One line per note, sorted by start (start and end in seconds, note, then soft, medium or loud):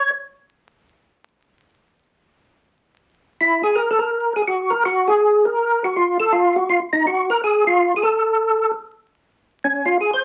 0.00 0.11 C#5 medium
3.41 3.62 E4 medium
3.63 3.77 G#4 medium
3.75 3.91 A#4 loud
3.91 4.00 A4 medium
3.99 4.33 A#4 medium
4.36 4.42 G#4 medium
4.47 4.73 F#4 medium
4.70 4.84 A#4 medium
4.85 5.10 F#4 loud
5.08 5.46 G#4 loud
5.45 5.83 A#4 loud
5.84 5.97 F#4 medium
5.96 6.18 F4 medium
6.20 6.33 A4 medium
6.33 6.56 F4 medium
6.56 6.69 F#4 medium
6.70 6.80 F4 medium
6.93 7.06 D#4 medium
7.07 7.30 F#4 medium
7.30 7.41 A#4 medium
7.44 7.65 G#4 medium
7.67 7.94 F4 medium
7.96 8.03 G#4 medium
8.03 8.71 A4 medium
9.64 9.85 C#4 medium
9.86 9.98 F4 medium
10.01 10.11 G#4 medium
10.14 10.23 C5 medium